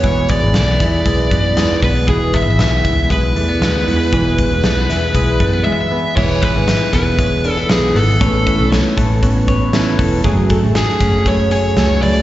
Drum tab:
CC |--------|--------|--------|x-------|
HH |xxxxxxxo|xxxxxxxo|xxxxxx--|-xxxxxxo|
SD |--oo--o-|--o---o-|--oo----|--oo--o-|
BD |oo-ooo-o|oo-oo---|oo--oo--|oo-oo---|

CC |--------|--------|
HH |xxxxxxxo|xxxxxxxo|
SD |--o---o-|--oo--o-|
BD |oo-ooo-o|oo-oo---|